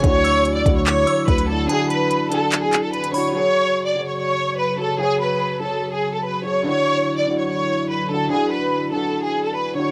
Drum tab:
HH |x-x-x-x-x-x-xx--|x-x-x-x-x-x-xxo-|----------------|----------------|
CP |--------x-------|--------x-x-----|----------------|----------------|
BD |o-----o-----o---|----------------|----------------|----------------|

HH |----------------|----------------|
CP |----------------|----------------|
BD |----------------|----------------|